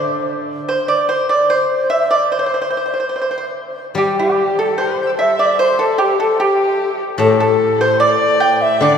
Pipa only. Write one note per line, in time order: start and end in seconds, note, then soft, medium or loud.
0.00 0.27 C5 medium
0.69 0.88 C5 medium
0.88 1.08 D5 medium
1.09 1.29 C5 medium
1.29 1.49 D5 medium
1.50 1.88 C5 medium
1.90 2.10 E5 medium
2.11 2.30 D5 medium
2.32 2.38 C5 medium
2.39 2.45 C5 soft
2.46 2.53 C5 soft
2.54 2.60 C5 soft
2.62 2.69 C5 soft
2.70 2.76 C5 soft
2.77 2.84 C5 soft
2.86 2.92 C5 soft
2.94 2.99 C5 soft
3.00 3.07 C5 soft
3.09 3.15 C5 soft
3.16 3.20 C5 soft
3.22 3.29 C5 soft
3.31 3.36 C5 soft
3.38 3.45 C5 soft
3.98 4.17 G4 medium
4.19 4.57 G4 medium
4.59 4.78 A4 medium
4.78 5.16 C5 medium
5.19 5.38 E5 medium
5.39 5.59 D5 medium
5.59 5.78 C5 medium
5.79 5.98 A4 medium
5.98 6.18 G4 medium
6.20 6.39 A4 medium
6.40 6.96 G4 medium
7.19 7.39 A4 medium
7.40 7.78 A4 medium
7.81 7.99 C5 medium
8.00 8.38 D5 medium
8.40 8.79 G5 medium
8.82 8.98 D5 medium